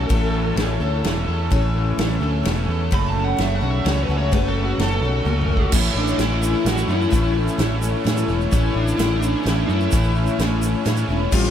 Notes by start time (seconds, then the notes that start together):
Already playing: C#3 A3 C#4 A4
0.09 A1 A2 E3 A3 C#4 E4 A4, kick, ride
0.34 E3
0.56 A1 E3 A3 C#4 A4, snare, ride
0.80 D2 A3 C#4 A4
1.04 E1 E3 A3 C#4 A4, snare, ride
1.28 E2 A4
1.50 A1 A2 E3 A3 C#4 A4, kick, ride
1.76 E3
1.98 A1 E3 A3 C#4 A4, snare, ride
2.20 D2 A3 C#4 A4
2.43 E1 E3 A3 C#4 A4, snare, ride
2.68 E2 A4
2.91 F#1 F#2 C#3 F#3 A3 C#4 F#4 A4 B5, kick, ride
3.08 A5
3.17 C#3
3.24 F#5
3.37 F#1 F#3 A3 C#4 A4 E5, snare, ride
3.55 F#5
3.61 B1 F#3 A3 C#4 F#4 A4
3.70 E5
3.85 C#2 F#3 A3 C#4 A4 C#5, snare, ride
4.03 B4
4.09 C#2 F#3 A3 C#4 F#4 A4
4.18 C#5
4.32 F#1 F#2 C#3 F#3 A3 C#4 A4 B4, kick, ride
4.48 A4
4.56 C#3
4.65 F#4
4.78 F#1 F#3 A3 C#4 A4, snare, ride
4.83 A4
4.96 A4
5.01 B1 A3 C#4 F#4 A4
5.05 F#3
5.25 C#2 F#3 A3 C#4 A4, high tom
5.41 mid tom
5.48 C#2 F#4
5.57 kick
5.72 A1 A2 E3 A3 C#4 E4 A4, kick, crash, shaker
5.95 A1 D4
6.08 shaker
6.18 A1 A2 E3 A3 C#4 E4, snare, closed hi-hat
6.43 shaker
6.65 A1 E3 A3 C#4 E4 F#4, snare, closed hi-hat
6.78 shaker
6.88 F#2 A3 C#4 E4, shaker
7.02 shaker
7.10 A1 A2 E3 A3 C#4 E4, kick, closed hi-hat, shaker
7.48 shaker
7.58 A1 A2 E3 A3 C#4 E4, snare, closed hi-hat
7.81 A3 C#4 E4, shaker
8.04 A2 E3 A3 C#4 E4, snare, closed hi-hat
8.17 shaker
8.28 E1 C#4 E4, shaker
8.32 A3
8.41 shaker
8.51 A1 A2 E3 A3 C#4 E4, kick, closed hi-hat, shaker
8.75 A1 D4
8.88 shaker
8.96 A1 A2 E3 A3 C#4 E4, snare, closed hi-hat
9.00 E4
9.19 D4 E4, shaker
9.24 A3 C#4
9.42 A1 E3 A3 C#4 E4, closed hi-hat
9.47 snare
9.66 F#2 E4, shaker
9.70 A3 C#4
9.81 shaker
9.92 A1 A2 E3 A3 C#4 E4, kick, closed hi-hat, shaker
10.03 shaker
10.15 shaker
10.27 shaker
10.37 A1 A2 E3 A3 C#4, snare, closed hi-hat
10.42 E4
10.62 A3 C#4 E4, shaker
10.85 A2 E3 A3 C#4 E4, snare, closed hi-hat, shaker
10.97 shaker
11.08 E1 A3 C#4 E4
11.32 A1 A2 F3 G3 A3 C4 F4 G4, kick, crash, shaker